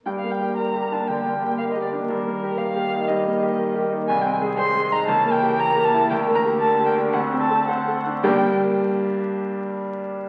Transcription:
<<
  \new Staff \with { instrumentName = "Violin" } { \time 4/4 \key g \minor \tempo 4 = 117 g''16 f''16 g''8 \tuplet 3/2 { bes''4 a''8 } g''4 f''16 ees''16 d''8 | bes'4 f''4 ees''4. r8 | aes''16 g''16 aes''8 \tuplet 3/2 { c'''4 bes''8 } a''8 g''8 ais''8 a''8 | g''8 bes''8 a''8 g''8 fis''8 a''8 fis''4 |
g''8 r2. r8 | }
  \new Staff \with { instrumentName = "Grand piano" } { \time 4/4 \key g \minor \tuplet 3/2 { g,8 bes8 g'8 bes'8 g'8 d'8 d8 bes8 g'8 bes'8 g'8 d'8 } | \tuplet 3/2 { g,8 bes8 g'8 bes'8 g'8 ees'8 g,8 bes8 g'8 bes'8 g'8 ees'8 } | \tuplet 3/2 { c,8 c'8 aes'8 c''8 aes'8 ees'8 cis,8 ais8 g'8 ais'8 g'8 e'8 } | \tuplet 3/2 { d,8 bes8 g'8 bes'8 g'8 d'8 d,8 c'8 a'8 c''8 a'8 d'8 } |
<g, g bes d' g' d''>8 r2. r8 | }
  \new Staff \with { instrumentName = "Viola" } { \time 4/4 \key g \minor bes1~ | bes1 | aes2 ais2~ | ais2 c'4. r8 |
bes8 r2. r8 | }
  \new Staff \with { instrumentName = "Cello" } { \clef bass \time 4/4 \key g \minor d1 | ees1~ | ees2 e2 | d2.~ d8 r8 |
d8 r2. r8 | }
>>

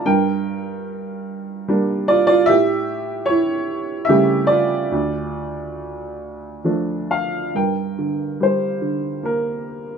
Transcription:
<<
  \new Staff \with { instrumentName = "Upright piano" } { \time 3/4 \key d \minor \tempo 4 = 73 << { g''4 r4. d''16 d''16 | e''4 cis''4 e''8 d''8~ | d''2 r8 f''8 | \key g \minor g''4 c''4 bes'4 | } \\ { bes'4 r4. f'16 f'16 | g'4 e'4 g'8 f'8~ | f'2 r4 | bes'4. r4. | } >> }
  \new Staff \with { instrumentName = "Upright piano" } { \clef bass \time 3/4 \key d \minor g,2 <g bes d'>4 | a,2 <cis g a>4 | d,2 <f a d'>4 | \key g \minor g,8 d8 g8 d8 bes4 | }
>>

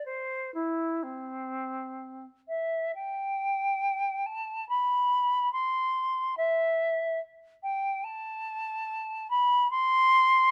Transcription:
\new Staff \with { instrumentName = "Flute" } { \time 3/4 \key c \major \tempo 4 = 71 c''8 e'8 c'4. e''8 | g''4. a''8 b''4 | c'''4 e''4 r8 g''8 | a''4. b''8 c'''4 | }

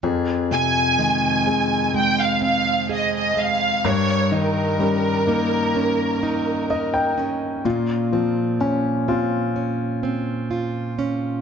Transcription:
<<
  \new Staff \with { instrumentName = "Violin section" } { \time 4/4 \key f \minor \tempo 4 = 63 r8 aes''4. g''16 f''16 f''8 ees''16 ees''16 f''8 | des''8 bes'2. r8 | r1 | }
  \new Staff \with { instrumentName = "Steel-string acoustic guitar" } { \time 4/4 \key f \minor <f, aes'>8 c'8 aes8 c'8 aes8 c'8 aes'8 aes8 | <g bes'>8 ees'8 des'8 ees'8 des'8 ees'8 bes'8 des'8 | <bes, f'>8 c'8 des'8 c'8 des'8 c'8 f'8 des'8 | }
  \new Staff \with { instrumentName = "Grand piano" } { \time 4/4 \key f \minor r1 | r2. ees''16 g''8. | r1 | }
  \new Staff \with { instrumentName = "Grand piano" } { \clef bass \time 4/4 \key f \minor f,8 c8 ees8 aes2 r8 | g,8 ees8 g8 bes2 r8 | bes,8 f8 des'8 f'2 r8 | }
>>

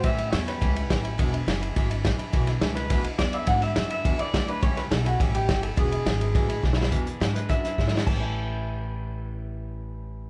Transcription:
<<
  \new Staff \with { instrumentName = "Clean electric guitar" } { \time 4/4 \key a \major \tempo 4 = 209 e''8.~ e''32 e''32 cis''8 b'2 r8 | r1 | r4. b'4 r8 d''8 e''8 | fis''8 e''4 e''4 d''4 b'8 |
cis''8 b'8 a'8 fis'8 g'8 g'4 a'8 | gis'2. r4 | r4. b'8 e''4. r8 | a''1~ |
a''1 | }
  \new Staff \with { instrumentName = "Steel-string acoustic guitar" } { \clef bass \time 4/4 \key a \major <a, e g cis' e'>8 <g cis' e'>8 <e g cis' e'>8 <g cis' e'>8 <a, e g cis' e'>8 <g cis' e'>8 <e g cis' e'>8 <g cis' e'>8 | <e, b, e gis d' e'>8 <e gis d' e'>8 <e gis d' e'>8 <e gis d' e'>8 <e, b, e gis d' e'>8 <e gis d' e'>8 <e gis d' e'>8 <e gis d' e'>8 | <e, b, e gis d' e'>8 <e gis d' e'>8 <e gis d' e'>8 <e gis d' e'>8 <e, b, e gis d' e'>8 <e gis d' e'>8 <e gis d' e'>8 <e gis d' e'>8 | <e, b, e gis d' e'>8 <e gis d' e'>8 <e gis d' e'>8 <e gis d' e'>8 <e, b, e gis d' e'>8 <e gis d' e'>8 <e gis d' e'>8 <e gis d' e'>8 |
<a, e g cis' e'>8 <g cis' e'>8 <e g cis' e'>8 <g cis' e'>8 <a, e g cis' e'>8 <g cis' e'>8 <e g cis' e'>8 <g cis' e'>8 | <e, b, e gis d' e'>8 <e gis d' e'>8 <e gis d' e'>8 <e gis d' e'>8 <e, b, e gis d' e'>8 <e gis d' e'>8 <e gis d' e'>8 <e gis d' e'>8 | <e, b, e gis d' e'>8 <e gis d' e'>8 <e gis d' e'>8 <e gis d' e'>8 <e, b, e gis d' e'>8 <e gis d' e'>8 <e gis d' e'>8 <e gis d' e'>8 | <a, e g cis' e'>1~ |
<a, e g cis' e'>1 | }
  \new Staff \with { instrumentName = "Upright bass" } { \clef bass \time 4/4 \key a \major a,4 e,4 cis,4 a,,4 | e,,4 fis,,4 gis,,4 a,,8 r8 | b,,4 cis,4 d,8 r8 e,4 | gis,4 fis,4 e,8 r8 d,4 |
cis,4 b,,4 a,,4 g,,4 | e,,4 gis,,4 a,,4 b,,4 | e,4 gis,4 fis,4 gis,4 | a,,1~ |
a,,1 | }
  \new DrumStaff \with { instrumentName = "Drums" } \drummode { \time 4/4 <bd cymr>8 cymr8 <cymr sn>8 <cymr sn>8 <bd cymr sn>8 cymr8 <bd cymr sn>8 cymr8 | <bd cymr>8 cymr8 <cymr sn>8 cymr8 <bd cymr sn>8 cymr8 <bd cymr sn>8 cymr8 | <bd cymr>8 <cymr sn>8 <cymr sn>8 <cymr sn>8 <bd cymr sn>8 cymr8 <bd cymr sn>8 cymr8 | <bd cymr>8 <cymr sn>8 <cymr sn>8 cymr8 <bd cymr>8 cymr8 <bd cymr sn>8 cymr8 |
<bd cymr>8 <cymr sn>8 <cymr sn>8 <cymr sn>8 <bd cymr sn>8 cymr8 <bd cymr sn>8 cymr8 | <bd cymr>8 cymr8 <cymr sn>8 cymr8 <bd cymr sn>8 cymr8 \tuplet 3/2 { <bd sn>8 sn8 sn8 } | <hh bd>8 hh8 <hh sn>8 <hh sn>8 <hh bd sn>8 <hh sn>8 \tuplet 3/2 { <bd sn>8 sn8 sn8 } | <cymc bd>4 r4 r4 r4 |
r4 r4 r4 r4 | }
>>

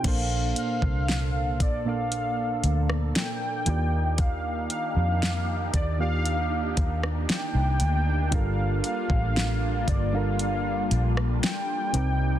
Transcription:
<<
  \new Staff \with { instrumentName = "Soft synth lead" } { \time 4/4 \key bes \major \tempo 4 = 58 f''8 f''4 d''16 f''4 r16 g''4 | f''8 f''4 d''16 f''4 r16 g''4 | f''8 f''4 d''16 f''4 r16 g''4 | }
  \new Staff \with { instrumentName = "Synth keys" } { \time 4/4 \key bes \major <bes, bes d' a' c''>4~ <bes, bes d' a' c''>16 r8 <bes, bes d' a' d''>4~ <bes, bes d' a' d''>16 r8 <ees bes f' g' d''>8~ | <ees bes f' g' d''>4 r8. <ees bes f' g' d''>4. r8. | <g d' f' a' bes'>4~ <g d' f' a' bes'>16 r8 <g d' f' a' bes'>4~ <g d' f' a' bes'>16 r8 <c c' ees' bes' d''>8 | }
  \new Staff \with { instrumentName = "Analog synth pad" } { \time 4/4 \key bes \major << { <d' a'>2.~ <d' a'>8 <ees' g'>8~ | <ees' g'>1 | <g bes>2.~ <g bes>8 <c ees'>8 | } \\ { bes1~ | bes1 | f'2.~ f'8 bes8 | } >> }
  \new Staff \with { instrumentName = "Fingered electric bass" } { \clef bass \time 4/4 \key bes \major bes,,8 r16 c,8. bes,,4 d,8 r8 ees,8~ | ees,8 r16 f,8. ees,4 ees,8 r16 c,16 d,8 | g,,8 r16 a,,8. g,,4 bes,,8 r8 c,8 | }
  \new DrumStaff \with { instrumentName = "Drums" } \drummode { \time 4/4 <cymc hh bd>8 hh16 bd16 sn8 <hh bd>8 hh8 hh16 ss16 <hh sn>8 hh8 | <hh bd>8 hh8 sn8 <hh bd>8 hh8 <hh bd>16 ss16 <hh sn>8 hh8 | <hh bd>8 hh16 bd16 sn8 <hh bd>8 hh8 hh16 ss16 <hh sn>8 hh8 | }
>>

